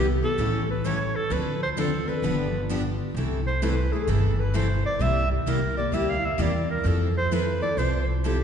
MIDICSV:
0, 0, Header, 1, 5, 480
1, 0, Start_track
1, 0, Key_signature, 0, "major"
1, 0, Tempo, 461894
1, 1363, Time_signature, 4, 2, 24, 8
1, 8768, End_track
2, 0, Start_track
2, 0, Title_t, "Clarinet"
2, 0, Program_c, 0, 71
2, 249, Note_on_c, 0, 69, 91
2, 689, Note_off_c, 0, 69, 0
2, 733, Note_on_c, 0, 71, 81
2, 889, Note_on_c, 0, 73, 86
2, 904, Note_off_c, 0, 71, 0
2, 1200, Note_on_c, 0, 69, 89
2, 1216, Note_off_c, 0, 73, 0
2, 1376, Note_on_c, 0, 71, 84
2, 1391, Note_off_c, 0, 69, 0
2, 1680, Note_off_c, 0, 71, 0
2, 1692, Note_on_c, 0, 72, 82
2, 1763, Note_off_c, 0, 72, 0
2, 1852, Note_on_c, 0, 69, 77
2, 2165, Note_on_c, 0, 71, 79
2, 2181, Note_off_c, 0, 69, 0
2, 2807, Note_off_c, 0, 71, 0
2, 3606, Note_on_c, 0, 72, 79
2, 3773, Note_on_c, 0, 71, 72
2, 3789, Note_off_c, 0, 72, 0
2, 4078, Note_on_c, 0, 68, 73
2, 4094, Note_off_c, 0, 71, 0
2, 4256, Note_on_c, 0, 69, 66
2, 4272, Note_off_c, 0, 68, 0
2, 4569, Note_on_c, 0, 71, 72
2, 4584, Note_off_c, 0, 69, 0
2, 4737, Note_on_c, 0, 72, 70
2, 4753, Note_off_c, 0, 71, 0
2, 5041, Note_off_c, 0, 72, 0
2, 5047, Note_on_c, 0, 74, 88
2, 5215, Note_on_c, 0, 76, 96
2, 5230, Note_off_c, 0, 74, 0
2, 5515, Note_off_c, 0, 76, 0
2, 5521, Note_on_c, 0, 67, 48
2, 5687, Note_off_c, 0, 67, 0
2, 5691, Note_on_c, 0, 70, 67
2, 5995, Note_off_c, 0, 70, 0
2, 6002, Note_on_c, 0, 74, 82
2, 6175, Note_on_c, 0, 76, 79
2, 6190, Note_off_c, 0, 74, 0
2, 6338, Note_on_c, 0, 77, 90
2, 6354, Note_off_c, 0, 76, 0
2, 6503, Note_on_c, 0, 76, 79
2, 6518, Note_off_c, 0, 77, 0
2, 6665, Note_on_c, 0, 74, 76
2, 6681, Note_off_c, 0, 76, 0
2, 6966, Note_off_c, 0, 74, 0
2, 6970, Note_on_c, 0, 70, 79
2, 7143, Note_on_c, 0, 69, 72
2, 7158, Note_off_c, 0, 70, 0
2, 7445, Note_off_c, 0, 69, 0
2, 7453, Note_on_c, 0, 72, 100
2, 7619, Note_on_c, 0, 71, 82
2, 7635, Note_off_c, 0, 72, 0
2, 7914, Note_off_c, 0, 71, 0
2, 7920, Note_on_c, 0, 74, 101
2, 8083, Note_on_c, 0, 72, 83
2, 8098, Note_off_c, 0, 74, 0
2, 8395, Note_off_c, 0, 72, 0
2, 8409, Note_on_c, 0, 64, 43
2, 8575, Note_off_c, 0, 64, 0
2, 8582, Note_on_c, 0, 67, 81
2, 8768, Note_off_c, 0, 67, 0
2, 8768, End_track
3, 0, Start_track
3, 0, Title_t, "Steel-string acoustic guitar"
3, 0, Program_c, 1, 25
3, 234, Note_on_c, 1, 67, 56
3, 246, Note_on_c, 1, 64, 51
3, 253, Note_on_c, 1, 59, 40
3, 397, Note_off_c, 1, 67, 0
3, 403, Note_off_c, 1, 64, 0
3, 406, Note_off_c, 1, 59, 0
3, 409, Note_on_c, 1, 49, 65
3, 410, Note_on_c, 1, 52, 59
3, 412, Note_on_c, 1, 57, 62
3, 417, Note_on_c, 1, 61, 72
3, 422, Note_on_c, 1, 67, 77
3, 638, Note_off_c, 1, 49, 0
3, 639, Note_off_c, 1, 52, 0
3, 639, Note_off_c, 1, 57, 0
3, 642, Note_off_c, 1, 61, 0
3, 645, Note_off_c, 1, 67, 0
3, 893, Note_on_c, 1, 49, 85
3, 893, Note_on_c, 1, 52, 84
3, 895, Note_on_c, 1, 57, 88
3, 899, Note_on_c, 1, 61, 89
3, 904, Note_on_c, 1, 67, 92
3, 1011, Note_off_c, 1, 49, 0
3, 1011, Note_off_c, 1, 52, 0
3, 1012, Note_off_c, 1, 57, 0
3, 1014, Note_off_c, 1, 61, 0
3, 1016, Note_off_c, 1, 67, 0
3, 1366, Note_on_c, 1, 50, 65
3, 1368, Note_on_c, 1, 53, 66
3, 1373, Note_on_c, 1, 60, 62
3, 1373, Note_on_c, 1, 62, 70
3, 1375, Note_on_c, 1, 69, 78
3, 1595, Note_off_c, 1, 50, 0
3, 1597, Note_off_c, 1, 53, 0
3, 1599, Note_off_c, 1, 60, 0
3, 1599, Note_off_c, 1, 62, 0
3, 1600, Note_off_c, 1, 69, 0
3, 1837, Note_on_c, 1, 50, 83
3, 1846, Note_on_c, 1, 60, 92
3, 1847, Note_on_c, 1, 69, 91
3, 1848, Note_on_c, 1, 53, 89
3, 1849, Note_on_c, 1, 62, 91
3, 1962, Note_off_c, 1, 50, 0
3, 1966, Note_off_c, 1, 60, 0
3, 1967, Note_off_c, 1, 53, 0
3, 1967, Note_off_c, 1, 69, 0
3, 1968, Note_off_c, 1, 62, 0
3, 2158, Note_on_c, 1, 69, 59
3, 2172, Note_on_c, 1, 62, 51
3, 2178, Note_on_c, 1, 60, 46
3, 2318, Note_off_c, 1, 69, 0
3, 2324, Note_off_c, 1, 62, 0
3, 2327, Note_off_c, 1, 60, 0
3, 2328, Note_on_c, 1, 50, 60
3, 2331, Note_on_c, 1, 53, 70
3, 2334, Note_on_c, 1, 59, 69
3, 2336, Note_on_c, 1, 62, 71
3, 2344, Note_on_c, 1, 67, 67
3, 2556, Note_off_c, 1, 50, 0
3, 2558, Note_off_c, 1, 53, 0
3, 2559, Note_off_c, 1, 59, 0
3, 2560, Note_off_c, 1, 62, 0
3, 2564, Note_off_c, 1, 67, 0
3, 2808, Note_on_c, 1, 50, 77
3, 2817, Note_on_c, 1, 53, 86
3, 2819, Note_on_c, 1, 62, 84
3, 2820, Note_on_c, 1, 59, 80
3, 2821, Note_on_c, 1, 67, 85
3, 2927, Note_off_c, 1, 50, 0
3, 2931, Note_off_c, 1, 53, 0
3, 2933, Note_off_c, 1, 59, 0
3, 2933, Note_off_c, 1, 62, 0
3, 2934, Note_off_c, 1, 67, 0
3, 3292, Note_on_c, 1, 48, 60
3, 3299, Note_on_c, 1, 52, 60
3, 3302, Note_on_c, 1, 57, 62
3, 3302, Note_on_c, 1, 64, 58
3, 3304, Note_on_c, 1, 69, 71
3, 3518, Note_off_c, 1, 48, 0
3, 3521, Note_off_c, 1, 52, 0
3, 3523, Note_off_c, 1, 57, 0
3, 3523, Note_off_c, 1, 64, 0
3, 3524, Note_off_c, 1, 69, 0
3, 3763, Note_on_c, 1, 48, 89
3, 3767, Note_on_c, 1, 52, 78
3, 3771, Note_on_c, 1, 57, 83
3, 3773, Note_on_c, 1, 64, 97
3, 3776, Note_on_c, 1, 69, 89
3, 3884, Note_off_c, 1, 48, 0
3, 3886, Note_off_c, 1, 52, 0
3, 3888, Note_off_c, 1, 57, 0
3, 3889, Note_off_c, 1, 64, 0
3, 3891, Note_off_c, 1, 69, 0
3, 4078, Note_on_c, 1, 69, 47
3, 4085, Note_on_c, 1, 64, 50
3, 4102, Note_on_c, 1, 57, 43
3, 4237, Note_off_c, 1, 69, 0
3, 4238, Note_off_c, 1, 57, 0
3, 4240, Note_off_c, 1, 64, 0
3, 4240, Note_on_c, 1, 48, 63
3, 4250, Note_on_c, 1, 52, 69
3, 4251, Note_on_c, 1, 57, 61
3, 4254, Note_on_c, 1, 64, 71
3, 4255, Note_on_c, 1, 69, 69
3, 4472, Note_off_c, 1, 48, 0
3, 4477, Note_off_c, 1, 52, 0
3, 4477, Note_off_c, 1, 57, 0
3, 4479, Note_off_c, 1, 64, 0
3, 4479, Note_off_c, 1, 69, 0
3, 4715, Note_on_c, 1, 48, 80
3, 4718, Note_on_c, 1, 52, 86
3, 4723, Note_on_c, 1, 57, 81
3, 4729, Note_on_c, 1, 69, 88
3, 4731, Note_on_c, 1, 64, 87
3, 4840, Note_off_c, 1, 48, 0
3, 4842, Note_off_c, 1, 52, 0
3, 4845, Note_off_c, 1, 57, 0
3, 4847, Note_off_c, 1, 69, 0
3, 4848, Note_off_c, 1, 64, 0
3, 5203, Note_on_c, 1, 48, 61
3, 5210, Note_on_c, 1, 58, 62
3, 5211, Note_on_c, 1, 55, 64
3, 5211, Note_on_c, 1, 64, 70
3, 5217, Note_on_c, 1, 67, 71
3, 5433, Note_off_c, 1, 48, 0
3, 5437, Note_off_c, 1, 58, 0
3, 5438, Note_off_c, 1, 55, 0
3, 5438, Note_off_c, 1, 64, 0
3, 5441, Note_off_c, 1, 67, 0
3, 5679, Note_on_c, 1, 48, 82
3, 5682, Note_on_c, 1, 55, 86
3, 5685, Note_on_c, 1, 58, 84
3, 5687, Note_on_c, 1, 67, 96
3, 5688, Note_on_c, 1, 64, 83
3, 5803, Note_off_c, 1, 48, 0
3, 5804, Note_off_c, 1, 55, 0
3, 5806, Note_off_c, 1, 58, 0
3, 5807, Note_off_c, 1, 64, 0
3, 5807, Note_off_c, 1, 67, 0
3, 5997, Note_on_c, 1, 67, 55
3, 6006, Note_on_c, 1, 64, 48
3, 6016, Note_on_c, 1, 58, 46
3, 6145, Note_off_c, 1, 58, 0
3, 6152, Note_off_c, 1, 64, 0
3, 6154, Note_on_c, 1, 48, 65
3, 6155, Note_off_c, 1, 67, 0
3, 6156, Note_on_c, 1, 55, 66
3, 6157, Note_on_c, 1, 58, 71
3, 6164, Note_on_c, 1, 64, 60
3, 6168, Note_on_c, 1, 67, 69
3, 6390, Note_off_c, 1, 48, 0
3, 6391, Note_off_c, 1, 55, 0
3, 6391, Note_off_c, 1, 58, 0
3, 6395, Note_off_c, 1, 64, 0
3, 6396, Note_off_c, 1, 67, 0
3, 6629, Note_on_c, 1, 48, 89
3, 6631, Note_on_c, 1, 55, 82
3, 6636, Note_on_c, 1, 58, 85
3, 6636, Note_on_c, 1, 64, 89
3, 6641, Note_on_c, 1, 67, 96
3, 6758, Note_off_c, 1, 48, 0
3, 6759, Note_off_c, 1, 55, 0
3, 6762, Note_off_c, 1, 58, 0
3, 6762, Note_off_c, 1, 64, 0
3, 6764, Note_off_c, 1, 67, 0
3, 7104, Note_on_c, 1, 53, 66
3, 7108, Note_on_c, 1, 60, 70
3, 7113, Note_on_c, 1, 69, 71
3, 7115, Note_on_c, 1, 64, 74
3, 7345, Note_off_c, 1, 53, 0
3, 7347, Note_off_c, 1, 60, 0
3, 7350, Note_off_c, 1, 64, 0
3, 7350, Note_off_c, 1, 69, 0
3, 7599, Note_on_c, 1, 53, 77
3, 7603, Note_on_c, 1, 60, 83
3, 7608, Note_on_c, 1, 64, 88
3, 7612, Note_on_c, 1, 69, 96
3, 7724, Note_off_c, 1, 53, 0
3, 7726, Note_off_c, 1, 60, 0
3, 7728, Note_off_c, 1, 64, 0
3, 7730, Note_off_c, 1, 69, 0
3, 7911, Note_on_c, 1, 69, 54
3, 7923, Note_on_c, 1, 64, 51
3, 7936, Note_on_c, 1, 60, 44
3, 8075, Note_off_c, 1, 69, 0
3, 8081, Note_off_c, 1, 64, 0
3, 8085, Note_off_c, 1, 60, 0
3, 8090, Note_on_c, 1, 53, 59
3, 8097, Note_on_c, 1, 60, 66
3, 8101, Note_on_c, 1, 64, 69
3, 8107, Note_on_c, 1, 69, 69
3, 8318, Note_off_c, 1, 53, 0
3, 8322, Note_off_c, 1, 60, 0
3, 8324, Note_off_c, 1, 64, 0
3, 8327, Note_off_c, 1, 69, 0
3, 8568, Note_on_c, 1, 53, 82
3, 8575, Note_on_c, 1, 60, 76
3, 8581, Note_on_c, 1, 64, 88
3, 8585, Note_on_c, 1, 69, 94
3, 8689, Note_off_c, 1, 53, 0
3, 8692, Note_off_c, 1, 60, 0
3, 8695, Note_off_c, 1, 64, 0
3, 8697, Note_off_c, 1, 69, 0
3, 8768, End_track
4, 0, Start_track
4, 0, Title_t, "Steel-string acoustic guitar"
4, 0, Program_c, 2, 25
4, 399, Note_on_c, 2, 55, 71
4, 404, Note_on_c, 2, 64, 80
4, 407, Note_on_c, 2, 69, 72
4, 633, Note_off_c, 2, 55, 0
4, 635, Note_off_c, 2, 64, 0
4, 637, Note_off_c, 2, 69, 0
4, 882, Note_on_c, 2, 55, 72
4, 887, Note_on_c, 2, 64, 92
4, 888, Note_on_c, 2, 69, 94
4, 1005, Note_off_c, 2, 55, 0
4, 1008, Note_off_c, 2, 64, 0
4, 1009, Note_off_c, 2, 69, 0
4, 3293, Note_on_c, 2, 55, 66
4, 3293, Note_on_c, 2, 60, 66
4, 3518, Note_off_c, 2, 60, 0
4, 3519, Note_off_c, 2, 55, 0
4, 3768, Note_on_c, 2, 55, 86
4, 3768, Note_on_c, 2, 60, 81
4, 3887, Note_off_c, 2, 55, 0
4, 3887, Note_off_c, 2, 60, 0
4, 4240, Note_on_c, 2, 55, 70
4, 4245, Note_on_c, 2, 60, 74
4, 4472, Note_off_c, 2, 55, 0
4, 4474, Note_off_c, 2, 60, 0
4, 4724, Note_on_c, 2, 55, 77
4, 4730, Note_on_c, 2, 60, 86
4, 4845, Note_off_c, 2, 55, 0
4, 4848, Note_off_c, 2, 60, 0
4, 8768, End_track
5, 0, Start_track
5, 0, Title_t, "Upright bass"
5, 0, Program_c, 3, 32
5, 0, Note_on_c, 3, 36, 90
5, 210, Note_off_c, 3, 36, 0
5, 399, Note_on_c, 3, 33, 87
5, 1168, Note_off_c, 3, 33, 0
5, 1352, Note_on_c, 3, 38, 92
5, 2123, Note_off_c, 3, 38, 0
5, 2311, Note_on_c, 3, 31, 86
5, 3083, Note_off_c, 3, 31, 0
5, 3268, Note_on_c, 3, 36, 85
5, 4041, Note_off_c, 3, 36, 0
5, 4230, Note_on_c, 3, 31, 85
5, 5003, Note_off_c, 3, 31, 0
5, 5189, Note_on_c, 3, 36, 89
5, 5578, Note_off_c, 3, 36, 0
5, 5674, Note_on_c, 3, 36, 75
5, 6086, Note_off_c, 3, 36, 0
5, 6147, Note_on_c, 3, 38, 82
5, 6562, Note_off_c, 3, 38, 0
5, 6629, Note_on_c, 3, 40, 83
5, 7043, Note_off_c, 3, 40, 0
5, 7115, Note_on_c, 3, 41, 92
5, 7887, Note_off_c, 3, 41, 0
5, 8075, Note_on_c, 3, 36, 82
5, 8768, Note_off_c, 3, 36, 0
5, 8768, End_track
0, 0, End_of_file